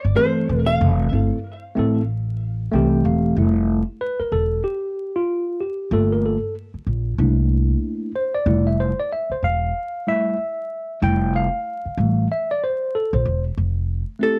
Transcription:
0.00 0.19 D5 loud
0.05 0.15 G1 medium
0.16 1.08 E3 medium
0.16 1.07 A3 medium
0.16 1.08 C4 medium
0.16 0.26 G#4 medium
0.16 0.69 C5 medium
0.26 1.12 A4 medium
0.49 0.76 E1 medium
0.67 3.00 F5 medium
0.81 1.08 F1 loud
1.11 1.29 G1 medium
1.11 1.36 A3 medium
1.11 1.37 C4 medium
1.11 1.37 E4 medium
1.11 1.38 A4 medium
1.75 2.68 A1 medium
1.75 2.00 A3 medium
1.75 2.01 C4 medium
1.75 2.01 E4 medium
1.75 2.02 A4 medium
2.72 3.00 C2 medium
2.72 3.37 E3 medium
2.72 3.36 A3 medium
2.72 3.36 C4 medium
2.72 3.38 G4 medium
2.72 3.03 G5 medium
3.05 3.32 E1 medium
3.05 3.35 F5 medium
3.37 3.80 F1 medium
3.37 3.81 G3 medium
3.37 3.82 A3 medium
3.37 3.82 E4 medium
4.01 4.20 B4 medium
4.19 4.33 A#4 medium
4.19 muted upright bass stroke soft
4.32 4.59 E1 medium
4.32 4.62 A4 medium
4.64 5.16 G4 medium
5.16 5.61 F4 medium
5.60 5.93 G4 medium
5.91 6.35 G1 medium
5.91 6.36 A3 medium
5.91 6.37 A#3 soft
5.91 6.37 F4 medium
5.91 6.12 A4 medium
6.12 6.25 A#4 medium
6.26 6.54 A4 medium
6.74 muted upright bass stroke soft
6.87 7.14 A#1 medium
7.18 7.73 C2 medium
7.18 8.11 A3 soft
7.18 8.11 A#3 soft
7.18 8.11 D4 medium
7.18 8.11 E4 medium
8.16 8.35 C5 medium
8.35 8.67 D5 medium
8.46 8.90 F1 loud
8.46 8.91 G3 medium
8.46 8.91 A3 medium
8.46 8.92 E4 medium
8.67 8.80 E5 medium
8.80 8.99 C5 medium
9.00 9.11 D5 medium
9.12 9.31 E5 medium
9.30 9.44 C5 medium
9.30 muted upright bass stroke soft
9.42 9.70 E1 medium
9.42 10.09 F5 loud
10.07 10.35 G3 soft
10.07 10.36 A3 soft
10.07 10.36 E4 medium
10.07 10.99 E5 loud
11.02 11.45 F1 loud
11.02 11.47 G3 medium
11.02 11.47 A3 medium
11.02 11.47 E4 medium
11.02 11.32 G5 loud
11.36 12.27 F5 loud
11.85 muted upright bass stroke soft
11.97 12.25 A1 medium
11.97 12.27 E3 medium
11.97 12.27 G3 medium
11.97 12.27 A3 soft
12.32 12.50 E5 medium
12.51 12.63 D5 medium
12.64 12.95 C5 medium
12.95 13.14 A4 medium
13.13 13.24 A#1 medium
13.13 13.43 C5 medium
13.25 13.53 E1 medium
13.57 14.01 F1 medium
14.19 14.39 A3 medium
14.19 14.39 C4 medium
14.19 14.39 E4 medium
14.19 14.39 A4 medium
14.23 14.39 G4 medium

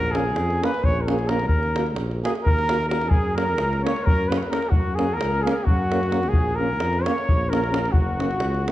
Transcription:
0.00 0.37 A#1 medium
0.00 0.13 A#4 medium
0.00 0.18 A#4 medium
0.12 0.23 A#3 medium
0.12 0.23 C#4 medium
0.12 0.65 G#4 medium
0.12 davul high medium
0.17 0.66 G#4 medium
0.36 0.62 F2 medium
0.36 davul high medium
0.50 davul high soft
0.61 0.71 A#3 medium
0.61 0.70 C#4 medium
0.61 0.86 B4 medium
0.61 davul high medium
0.65 0.86 B4 medium
0.74 davul high soft
0.83 1.51 A#1 medium
0.83 1.04 C#5 medium
0.83 1.03 C#5 loud
0.83 davul low medium
1.01 1.09 A#4 soft
1.07 1.17 A#3 medium
1.07 1.15 C#4 medium
1.07 1.30 G#4 medium
1.07 1.31 G#4 medium
1.07 davul high medium
1.19 davul high soft
1.28 1.38 A#3 medium
1.28 1.37 C#4 medium
1.28 1.46 A#4 medium
1.28 1.47 A#4 medium
1.28 davul high medium
1.39 davul high soft
1.47 1.99 D#2 medium
1.47 1.89 A#4 medium
1.47 1.90 A#4 medium
1.47 davul low medium
1.63 davul high soft
1.76 1.85 A#3 medium
1.76 1.86 F#4 medium
1.76 davul high medium
1.86 davul high soft
1.96 2.24 A#1 medium
1.96 davul high medium
2.11 davul high soft
2.24 2.33 A#3 medium
2.24 2.34 F#4 medium
2.24 2.34 G#4 medium
2.24 davul high medium
2.35 davul high soft
2.44 3.12 D#2 medium
2.44 2.86 A#4 loud
2.44 2.87 A#4 medium
2.44 davul low medium
2.59 davul high soft
2.69 2.78 A#3 soft
2.69 2.79 F#4 medium
2.69 davul high medium
2.88 2.97 A#3 soft
2.88 2.98 F#4 medium
2.88 3.12 A#4 medium
2.88 3.10 A#4 medium
2.88 davul high medium
3.01 davul high soft
3.08 3.61 F#2 medium
3.08 3.34 G#4 medium
3.08 3.36 G#4 medium
3.08 davul low medium
3.35 3.45 A#3 soft
3.35 3.45 C#4 soft
3.35 3.80 A#4 medium
3.35 3.82 A#4 medium
3.35 davul high medium
3.58 3.85 C#2 medium
3.58 davul high medium
3.73 davul high soft
3.82 3.93 A#3 medium
3.82 3.93 C#4 medium
3.82 4.05 C#5 medium
3.82 4.08 C#5 medium
3.87 davul high medium
3.96 davul high soft
4.03 4.42 F#2 medium
4.03 4.29 A#4 medium
4.03 4.30 A#4 loud
4.03 davul low medium
4.28 4.38 A#3 medium
4.28 4.39 C#4 medium
4.28 4.38 B4 medium
4.28 4.39 B4 medium
4.32 davul high medium
4.37 4.51 B4 medium
4.37 4.41 C#5 medium
4.37 4.39 C#5 medium
4.43 davul high soft
4.49 4.58 A#3 medium
4.49 4.59 C#4 medium
4.49 4.71 A#4 medium
4.49 4.70 A#4 medium
4.53 davul high medium
4.62 davul high soft
4.69 5.22 F#2 medium
4.69 4.97 F#4 medium
4.69 davul low medium
4.95 5.06 A#3 medium
4.95 5.07 C#4 medium
4.95 5.16 G#4 medium
4.95 5.19 G#4 medium
4.95 davul high medium
5.14 5.43 A#4 medium
5.14 5.45 A#4 medium
5.20 5.46 C#2 medium
5.20 davul high medium
5.34 davul high soft
5.41 5.54 A#3 medium
5.41 5.53 G#4 medium
5.41 5.54 G#4 medium
5.46 5.54 C#4 medium
5.46 davul high medium
5.51 5.66 G#4 medium
5.51 5.54 A#4 medium
5.51 5.57 A#4 medium
5.55 5.67 G#4 medium
5.64 6.33 F#2 medium
5.64 6.30 F#4 medium
5.64 davul low medium
5.91 6.00 A#3 medium
5.91 5.99 C#4 medium
5.91 davul high medium
6.03 davul high soft
6.11 6.20 A#3 medium
6.11 6.19 C#4 medium
6.11 davul high medium
6.23 davul high soft
6.29 6.81 A#1 medium
6.29 6.60 G#4 medium
6.29 6.57 G#4 medium
6.33 davul low medium
6.56 7.05 A#4 medium
6.56 7.06 A#4 medium
6.60 6.68 A#3 medium
6.60 6.68 C#4 medium
6.80 7.06 F2 medium
6.80 davul high medium
6.93 davul high soft
7.03 7.15 A#3 medium
7.03 7.14 C#4 medium
7.03 7.52 C#5 medium
7.03 7.51 C#5 medium
7.03 davul high medium
7.18 davul high soft
7.29 7.95 A#1 medium
7.29 davul low medium
7.49 7.59 C#4 medium
7.49 7.93 A#4 medium
7.49 7.94 A#4 medium
7.49 davul high medium
7.54 7.61 A#3 medium
7.64 davul high soft
7.71 7.82 A#3 medium
7.71 7.79 C#4 medium
7.71 davul high medium
7.85 davul high soft
7.91 8.42 F#1 medium
7.91 8.72 F#4 medium
7.91 davul low medium
8.20 8.29 A#3 soft
8.20 8.28 C#4 soft
8.20 davul high medium
8.31 davul high soft
8.40 8.66 C#2 medium
8.40 davul high medium
8.54 davul high soft
8.67 8.72 A#3 medium
8.67 8.72 C#4 soft
8.67 davul high medium

